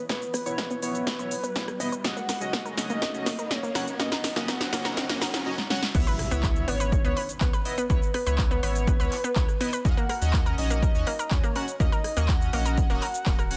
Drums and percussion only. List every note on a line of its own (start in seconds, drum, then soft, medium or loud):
0.09 kick loud
0.09 snare medium
0.09 closed hi-hat medium
0.09 shaker soft
0.22 closed hi-hat soft
0.22 shaker soft
0.34 cross-stick medium
0.34 open hi-hat loud
0.34 shaker medium
0.46 closed hi-hat medium
0.46 shaker soft
0.58 kick loud
0.58 snare medium
0.58 closed hi-hat medium
0.58 shaker soft
0.70 closed hi-hat soft
0.70 shaker soft
0.83 open hi-hat loud
0.83 shaker medium
0.95 closed hi-hat medium
0.95 shaker soft
1.07 kick loud
1.07 snare medium
1.07 closed hi-hat medium
1.07 shaker soft
1.19 closed hi-hat soft
1.19 shaker soft
1.31 open hi-hat loud
1.31 shaker medium
1.44 closed hi-hat medium
1.44 shaker soft
1.56 kick loud
1.56 snare medium
1.56 closed hi-hat medium
1.56 shaker soft
1.68 cross-stick medium
1.68 closed hi-hat soft
1.68 shaker soft
1.80 open hi-hat loud
1.80 shaker medium
1.92 closed hi-hat medium
1.92 shaker soft
2.04 kick loud
2.04 snare medium
2.04 closed hi-hat soft
2.04 shaker soft
2.17 closed hi-hat soft
2.17 shaker soft
2.29 snare medium
2.29 open hi-hat loud
2.29 shaker medium
2.41 closed hi-hat medium
2.41 shaker soft
2.53 kick loud
2.53 snare medium
2.53 closed hi-hat medium
2.53 shaker soft
2.65 closed hi-hat soft
2.65 shaker soft
2.78 snare medium
2.78 open hi-hat loud
2.78 shaker medium
2.90 closed hi-hat medium
2.90 shaker soft
3.02 kick loud
3.02 snare medium
3.02 closed hi-hat medium
3.02 shaker soft
3.14 closed hi-hat soft
3.14 shaker soft
3.26 snare medium
3.26 open hi-hat loud
3.26 shaker medium
3.39 closed hi-hat medium
3.39 shaker soft
3.51 kick loud
3.51 snare medium
3.51 closed hi-hat medium
3.51 shaker soft
3.63 closed hi-hat soft
3.63 shaker soft
3.75 snare medium
3.75 open hi-hat loud
3.75 shaker medium
3.87 closed hi-hat medium
3.87 shaker soft
4.00 kick loud
4.00 snare medium
4.00 closed hi-hat soft
4.00 shaker soft
4.12 snare medium
4.12 closed hi-hat soft
4.12 shaker soft
4.24 snare loud
4.24 open hi-hat loud
4.24 shaker medium
4.36 snare medium
4.36 closed hi-hat medium
4.36 shaker soft
4.48 kick loud
4.48 snare medium
4.48 closed hi-hat soft
4.48 shaker soft
4.61 snare medium
4.61 closed hi-hat soft
4.61 shaker soft
4.73 snare loud
4.73 open hi-hat loud
4.73 shaker medium
4.85 snare medium
4.85 closed hi-hat medium
4.85 shaker soft
4.97 kick loud
4.97 snare loud
4.97 closed hi-hat medium
4.97 shaker soft
5.09 snare medium
5.09 closed hi-hat soft
5.09 shaker soft
5.22 snare loud
5.22 open hi-hat loud
5.22 shaker medium
5.34 snare medium
5.34 closed hi-hat soft
5.34 shaker soft
5.58 snare medium
5.70 snare medium
5.83 snare medium
5.95 kick loud
5.95 closed hi-hat medium
5.95 crash loud
5.95 shaker medium
6.07 closed hi-hat soft
6.07 shaker soft
6.19 cross-stick medium
6.19 open hi-hat loud
6.31 closed hi-hat medium
6.31 shaker medium
6.43 kick loud
6.43 clap loud
6.43 closed hi-hat medium
6.43 shaker medium
6.56 closed hi-hat soft
6.56 shaker soft
6.68 open hi-hat loud
6.80 closed hi-hat medium
6.80 shaker medium
6.92 kick loud
6.92 closed hi-hat medium
6.92 shaker medium
7.05 closed hi-hat soft
7.05 shaker soft
7.17 open hi-hat loud
7.29 closed hi-hat medium
7.29 shaker medium
7.41 kick loud
7.41 clap loud
7.41 closed hi-hat medium
7.41 shaker medium
7.53 cross-stick medium
7.53 closed hi-hat soft
7.53 shaker soft
7.65 open hi-hat loud
7.78 closed hi-hat medium
7.78 shaker medium
7.90 kick loud
7.90 closed hi-hat medium
7.90 shaker medium
8.02 closed hi-hat soft
8.02 shaker soft
8.14 cross-stick medium
8.14 open hi-hat loud
8.26 closed hi-hat medium
8.26 shaker medium
8.38 kick loud
8.38 clap loud
8.38 closed hi-hat medium
8.38 shaker medium
8.51 closed hi-hat soft
8.51 shaker soft
8.63 open hi-hat loud
8.75 closed hi-hat medium
8.75 shaker medium
8.87 kick loud
8.87 closed hi-hat medium
8.87 shaker medium
9.00 closed hi-hat soft
9.00 shaker soft
9.12 clap soft
9.12 open hi-hat loud
9.24 closed hi-hat medium
9.24 shaker medium
9.36 kick loud
9.36 clap loud
9.36 closed hi-hat medium
9.36 shaker medium
9.48 cross-stick medium
9.48 closed hi-hat soft
9.48 shaker soft
9.61 open hi-hat loud
9.73 closed hi-hat medium
9.73 shaker medium
9.85 kick loud
9.85 closed hi-hat medium
9.85 shaker medium
9.97 closed hi-hat soft
9.97 shaker soft
10.09 cross-stick medium
10.09 open hi-hat loud
10.22 closed hi-hat medium
10.22 shaker medium
10.33 kick loud
10.33 clap loud
10.33 closed hi-hat medium
10.33 shaker medium
10.46 closed hi-hat soft
10.46 shaker soft
10.58 open hi-hat loud
10.70 closed hi-hat medium
10.70 shaker medium
10.82 kick loud
10.82 closed hi-hat medium
10.82 shaker medium
10.95 closed hi-hat soft
10.95 shaker soft
11.07 open hi-hat loud
11.19 closed hi-hat soft
11.19 shaker medium
11.31 kick loud
11.31 clap loud
11.31 closed hi-hat medium
11.31 shaker medium
11.43 cross-stick medium
11.43 closed hi-hat soft
11.43 shaker soft
11.56 open hi-hat loud
11.68 closed hi-hat medium
11.68 shaker medium
11.80 kick loud
11.80 closed hi-hat medium
11.80 shaker medium
11.92 closed hi-hat soft
11.92 shaker soft
12.04 cross-stick medium
12.04 open hi-hat loud
12.17 closed hi-hat medium
12.17 shaker medium
12.28 kick loud
12.28 clap loud
12.28 closed hi-hat soft
12.28 shaker medium
12.41 closed hi-hat soft
12.41 shaker soft
12.53 open hi-hat loud
12.65 closed hi-hat medium
12.65 shaker medium
12.78 kick loud
12.78 closed hi-hat medium
12.78 shaker medium
12.90 closed hi-hat soft
12.90 shaker soft
13.02 clap soft
13.02 open hi-hat loud
13.14 closed hi-hat medium
13.14 shaker medium
13.26 kick loud
13.26 clap loud
13.26 closed hi-hat soft
13.26 shaker medium
13.39 cross-stick medium
13.39 closed hi-hat soft
13.39 shaker soft
13.51 open hi-hat loud